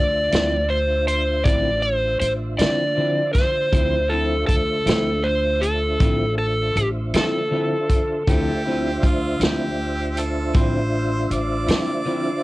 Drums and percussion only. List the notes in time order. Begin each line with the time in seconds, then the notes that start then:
0.32 snare, closed hi-hat
1.08 closed hi-hat
1.46 kick, closed hi-hat
2.21 closed hi-hat
2.59 snare, closed hi-hat
3.35 kick, snare, closed hi-hat
3.73 kick, closed hi-hat
4.49 kick, closed hi-hat
4.87 snare, closed hi-hat
5.63 closed hi-hat
6.00 kick, closed hi-hat
6.76 closed hi-hat
7.14 snare, closed hi-hat
7.89 kick, closed hi-hat
8.27 kick, closed hi-hat
9.03 kick, closed hi-hat
9.41 snare, closed hi-hat
10.17 closed hi-hat
10.54 kick, closed hi-hat
11.31 closed hi-hat
11.68 snare, closed hi-hat